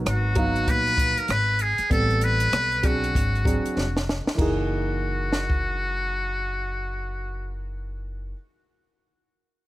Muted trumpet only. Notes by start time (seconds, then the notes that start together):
0.08 F#4
0.70 B4
1.19 A#4
1.31 B4
1.62 G#4
1.92 A4
2.24 B4
2.85 F#4
4.39 F#4